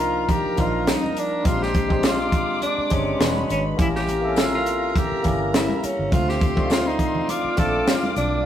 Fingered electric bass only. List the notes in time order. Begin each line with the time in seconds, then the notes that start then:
Already playing: C2
0.46 muted fingered electric bass stroke
0.58 A#1
1.46 A#1
2.78 muted fingered electric bass stroke
2.91 G1
3.20 E1
3.50 G#1
3.79 A1
5.12 muted fingered electric bass stroke
5.25 G1
5.84 muted fingered electric bass stroke
5.99 G1
6.12 D2
7.44 muted fingered electric bass stroke
7.58 A#1
8.16 B1